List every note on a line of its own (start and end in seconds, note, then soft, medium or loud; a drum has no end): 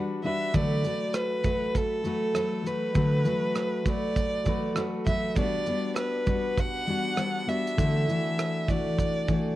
0.00 0.23 G3 medium
0.00 0.24 D4 medium
0.00 0.24 F#4 medium
0.00 0.24 B4 medium
0.24 0.54 G3 soft
0.24 0.54 D4 medium
0.24 0.54 F#4 medium
0.24 0.54 B4 medium
0.24 0.56 E5 medium
0.53 0.84 D3 medium
0.53 0.83 F#3 medium
0.53 0.84 A3 medium
0.53 0.85 F#4 medium
0.53 0.85 B4 medium
0.53 1.16 D5 medium
0.53 kick medium
0.53 shaker medium
0.84 1.43 F#3 soft
0.84 1.44 A3 medium
0.84 1.45 F#4 medium
0.84 1.46 B4 medium
0.84 shaker soft
1.14 1.79 B4 medium
1.14 cross-stick medium
1.14 shaker medium
1.44 2.03 F#3 medium
1.44 2.04 A3 soft
1.44 2.06 F#4 soft
1.44 2.06 B4 soft
1.44 kick medium
1.44 shaker soft
1.75 2.68 A4 medium
1.75 kick medium
1.75 shaker medium
2.04 2.34 F#3 medium
2.04 2.35 A3 medium
2.04 2.35 F#4 medium
2.04 2.36 B4 medium
2.04 shaker soft
2.35 2.63 F#3 soft
2.35 2.64 A3 medium
2.35 2.65 F#4 medium
2.35 2.66 B4 medium
2.35 cross-stick medium
2.35 shaker medium
2.64 2.94 F#3 medium
2.64 2.94 A3 medium
2.64 2.95 F#4 medium
2.64 3.90 B4 medium
2.64 2.95 B4 medium
2.64 shaker soft
2.94 3.25 D3 medium
2.94 3.24 F#3 medium
2.94 3.25 A3 medium
2.94 3.26 F#4 medium
2.94 3.26 B4 medium
2.94 kick medium
2.94 shaker medium
3.25 3.85 F#3 medium
3.25 3.85 A3 medium
3.25 3.87 F#4 medium
3.25 3.87 B4 medium
3.25 shaker soft
3.55 cross-stick medium
3.55 shaker medium
3.85 4.45 F#3 medium
3.85 4.46 A3 soft
3.85 4.47 F#4 medium
3.85 4.48 B4 medium
3.85 4.78 D5 medium
3.85 kick medium
3.85 shaker soft
4.16 kick medium
4.16 shaker medium
4.45 4.74 F#3 medium
4.45 4.76 A3 medium
4.45 4.76 F#4 medium
4.45 4.77 B4 medium
4.45 kick medium
4.45 shaker soft
4.76 5.05 F#3 medium
4.76 5.07 A3 medium
4.76 5.07 F#4 medium
4.76 5.07 B4 medium
4.76 cross-stick medium
4.76 shaker medium
5.06 5.36 F#3 medium
5.06 5.36 A3 medium
5.06 5.37 F#4 medium
5.06 5.38 B4 medium
5.06 5.35 E5 medium
5.06 kick medium
5.06 shaker soft
5.36 5.66 G3 medium
5.36 5.67 B3 medium
5.36 5.67 D4 medium
5.36 5.68 F#4 medium
5.36 5.93 D5 medium
5.36 kick medium
5.36 shaker medium
5.66 6.25 G3 medium
5.66 6.27 B3 medium
5.66 6.28 D4 medium
5.66 6.28 F#4 medium
5.66 shaker soft
5.96 6.61 B4 medium
5.96 cross-stick loud
5.96 shaker medium
6.26 6.86 G3 soft
6.26 6.87 B3 medium
6.26 6.89 D4 medium
6.26 6.90 F#4 medium
6.26 kick medium
6.26 shaker soft
6.57 7.50 F#5 loud
6.57 kick medium
6.57 shaker medium
6.87 7.16 G3 medium
6.87 7.17 B3 medium
6.87 7.18 D4 medium
6.87 7.19 F#4 medium
6.87 shaker soft
7.17 7.46 G3 medium
7.17 7.47 B3 medium
7.17 7.47 D4 medium
7.17 7.48 F#4 medium
7.17 cross-stick medium
7.17 shaker medium
7.47 7.77 G3 medium
7.47 7.78 B3 medium
7.47 7.77 D4 medium
7.47 7.77 F#4 medium
7.47 8.72 E5 medium
7.47 shaker soft
7.67 shaker soft
7.77 8.08 D3 medium
7.77 8.06 E3 medium
7.77 8.07 A3 medium
7.77 8.08 D4 medium
7.77 8.08 F#4 medium
7.77 kick medium
7.77 shaker medium
8.08 8.67 E3 medium
8.08 8.69 A3 soft
8.08 8.70 D4 medium
8.08 8.71 F#4 medium
8.08 shaker soft
8.39 cross-stick medium
8.39 shaker medium
8.68 9.26 E3 soft
8.68 9.28 A3 soft
8.68 9.30 D4 soft
8.68 9.30 F#4 soft
8.68 9.56 D5 medium
8.68 kick medium
8.68 shaker soft
8.98 kick medium
8.98 shaker medium
9.28 9.56 E3 medium
9.28 9.56 A3 medium
9.28 9.56 D4 medium
9.28 9.56 F#4 medium
9.28 kick medium
9.28 shaker soft